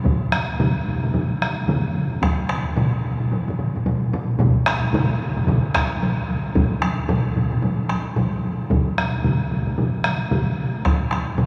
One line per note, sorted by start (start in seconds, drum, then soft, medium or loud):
0.04 taiko medium
0.04 taiko mid medium
0.04 taiko high medium
0.21 taiko high soft
0.32 taiko rim medium
0.32 taiko high medium
0.59 taiko mid loud
0.59 taiko high medium
0.76 taiko high soft
0.87 taiko mid medium
0.87 taiko high soft
1.04 taiko mid medium
1.04 taiko high soft
1.14 taiko mid medium
1.14 taiko high medium
1.31 taiko high soft
1.42 taiko rim medium
1.42 taiko high medium
1.58 taiko high soft
1.68 taiko mid loud
1.68 taiko high medium
1.85 taiko high soft
1.95 taiko high medium
2.12 taiko high soft
2.22 taiko rim medium
2.22 taiko loud
2.22 taiko high medium
2.39 taiko high soft
2.49 taiko rim medium
2.76 taiko low-mid loud
2.76 taiko high medium
3.05 taiko high soft
3.20 taiko low-mid medium
3.20 taiko high soft
3.31 taiko low-mid medium
3.31 taiko high medium
3.48 taiko low-mid medium
3.48 taiko high soft
3.59 taiko low-mid medium
3.59 taiko high medium
3.76 taiko low-mid medium
3.76 taiko high soft
3.86 taiko low-mid medium
3.86 taiko high medium
4.13 taiko low-mid loud
4.13 taiko high medium
4.30 taiko high soft
4.40 taiko loud
4.40 taiko low-mid medium
4.40 taiko mid medium
4.40 taiko high medium
4.57 taiko high soft
4.66 taiko rim medium
4.66 taiko high medium
4.84 taiko high soft
4.93 taiko low-mid loud
4.93 taiko mid medium
4.93 taiko high medium
5.11 taiko high soft
5.21 taiko high soft
5.37 taiko low-mid medium
5.37 taiko mid medium
5.37 taiko high soft
5.47 taiko medium
5.47 taiko low-mid medium
5.47 taiko mid medium
5.47 taiko high medium
5.65 taiko high soft
5.74 taiko rim medium
5.74 taiko medium
5.92 taiko high soft
6.03 taiko high medium
6.19 taiko high soft
6.30 taiko high medium
6.46 taiko high soft
6.55 taiko loud
6.55 taiko low-mid medium
6.55 taiko high medium
6.74 taiko high soft
6.82 taiko rim medium
6.82 taiko high medium
7.09 taiko low-mid loud
7.09 taiko high medium
7.26 taiko high soft
7.36 taiko low-mid medium
7.36 taiko high soft
7.52 taiko low-mid medium
7.52 taiko high soft
7.62 taiko low-mid medium
7.62 taiko high medium
7.80 taiko high soft
7.89 taiko rim medium
7.89 taiko high medium
8.07 taiko high soft
8.16 taiko low-mid medium
8.16 taiko high medium
8.35 taiko high soft
8.45 taiko high soft
8.61 taiko high soft
8.71 taiko loud
8.71 taiko mid medium
8.71 taiko high medium
8.87 taiko high soft
8.98 taiko rim medium
8.98 taiko high soft
9.24 taiko mid medium
9.24 taiko high medium
9.42 taiko high soft
9.51 taiko mid medium
9.67 taiko mid medium
9.67 taiko high soft
9.78 taiko mid medium
9.78 taiko high medium
9.94 taiko high soft
10.04 taiko rim medium
10.04 taiko high medium
10.21 taiko high soft
10.31 taiko mid loud
10.31 taiko high medium
10.48 taiko high soft
10.59 taiko high soft
10.75 taiko high soft
10.85 taiko rim medium
10.85 taiko medium
10.85 taiko high medium
11.02 taiko high soft
11.11 taiko rim medium
11.11 taiko high soft
11.38 taiko low-mid medium
11.38 taiko high medium